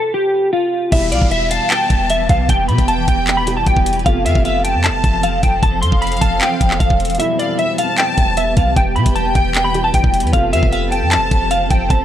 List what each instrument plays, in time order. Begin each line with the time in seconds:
Already playing: felt piano C3 F3 A3 F4, clean electric guitar A4
0.14 clean electric guitar G4
0.53 clean electric guitar F4
0.91 808-style bass E1, felt piano B2 E3 G3 E4, ambient pad E3 B3 G4 B4, clean electric guitar E5, kick, closed hi-hat, crash, downlifter
1.12 808-style bass B1, clean electric guitar D5, violin section F5, closed hi-hat
1.22 808-style bass E1, kick
1.31 clean electric guitar E5, violin section E5, closed hi-hat
1.51 clean electric guitar F5, violin section A5, closed hi-hat
1.70 clean electric guitar G5, clap, closed hi-hat
1.90 808-style bass E1, kick, closed hi-hat
2.10 clean electric guitar E5, closed hi-hat
2.29 808-style bass B1, clean electric guitar F5, kick, closed hi-hat
2.49 808-style bass E1, clean electric guitar G5, kick, closed hi-hat
2.68 808-style bass B2, violin section G5, clean electric guitar B5, closed hi-hat
2.78 808-style bass E1, kick, closed hi-hat
2.88 clean electric guitar A5, closed hi-hat
3.08 808-style bass E1, clean electric guitar G5, kick, closed hi-hat
3.27 clap, closed hi-hat
3.37 clean electric guitar B5
3.46 felt piano B2 E3 G3 G4, closed hi-hat
3.57 clean electric guitar A5
3.66 808-style bass E1, clean electric guitar G5, kick, closed hi-hat
3.76 kick
3.86 808-style bass F1, closed hi-hat, open hi-hat
3.93 808-style bass E1, closed hi-hat
3.99 closed hi-hat
4.04 808-style bass F1, felt piano C3 F3 A3 F4, ambient pad F3 C4 A4 C5, clean electric guitar F5, kick, closed hi-hat
4.25 808-style bass F2, clean electric guitar E5, violin section F5, closed hi-hat
4.35 808-style bass F1, kick
4.45 violin section E5, clean electric guitar F5, closed hi-hat
4.64 clean electric guitar G5, violin section A5, closed hi-hat
4.74 808-style bass F2
4.84 clean electric guitar A5, clap, closed hi-hat
4.89 808-style bass F1
5.04 808-style bass F1, kick, closed hi-hat
5.23 clean electric guitar F5, closed hi-hat
5.43 808-style bass F1, clean electric guitar G5, kick, closed hi-hat
5.63 808-style bass F1, clean electric guitar A5, kick, closed hi-hat
5.82 808-style bass F2, violin section F5, clean electric guitar C6, closed hi-hat
5.92 808-style bass F1, kick
6.02 clean electric guitar B5, closed hi-hat
6.07 closed hi-hat
6.12 closed hi-hat
6.17 closed hi-hat
6.21 808-style bass F1, clean electric guitar A5, kick, closed hi-hat
6.41 clean electric guitar G5, clap, closed hi-hat
6.61 808-style bass F1, kick, closed hi-hat
6.71 clap
6.80 808-style bass E1, clean electric guitar F5, kick, closed hi-hat
6.90 kick
7.00 closed hi-hat, open hi-hat
7.05 closed hi-hat
7.10 closed hi-hat
7.15 felt piano B2, closed hi-hat
7.19 felt piano E3 G3 E4, ambient pad E3 B3 G4 B4, clean electric guitar E5, closed hi-hat
7.39 clean electric guitar D5, violin section F5, closed hi-hat
7.59 clean electric guitar E5, violin section E5, closed hi-hat
7.78 clean electric guitar F5, violin section A5, closed hi-hat
7.98 clean electric guitar G5, clap, closed hi-hat
8.18 808-style bass E1, kick, closed hi-hat
8.37 clean electric guitar E5, closed hi-hat
8.57 808-style bass B1, clean electric guitar F5, kick, closed hi-hat
8.76 808-style bass E1, clean electric guitar G5, kick, closed hi-hat
8.96 808-style bass B2, violin section G5, clean electric guitar B5, closed hi-hat
9.06 808-style bass E1, kick, closed hi-hat
9.15 clean electric guitar A5, closed hi-hat
9.35 808-style bass E1, clean electric guitar G5, kick, closed hi-hat
9.55 clap, closed hi-hat
9.64 clean electric guitar B5
9.73 felt piano B2 E3 G3 G4, closed hi-hat
9.84 clean electric guitar A5
9.94 808-style bass E1, clean electric guitar G5, kick, closed hi-hat
10.04 808-style bass E1, kick
10.14 closed hi-hat, open hi-hat
10.20 808-style bass E2, closed hi-hat
10.27 closed hi-hat
10.32 808-style bass F1, felt piano C3 F3 A3 F4, ambient pad F3 C4 A4 C5, clean electric guitar F5, kick, closed hi-hat
10.53 808-style bass F2, clean electric guitar E5, violin section F5, closed hi-hat
10.63 808-style bass F1, kick
10.72 violin section E5, clean electric guitar F5, closed hi-hat
10.92 clean electric guitar G5, violin section A5, closed hi-hat
11.02 808-style bass F2
11.11 clean electric guitar A5, clap, closed hi-hat
11.17 808-style bass F1
11.31 808-style bass F1, kick, closed hi-hat
11.51 clean electric guitar F5, closed hi-hat
11.70 808-style bass F1, clean electric guitar G5, kick, closed hi-hat
11.90 808-style bass F1, clean electric guitar A5, kick, closed hi-hat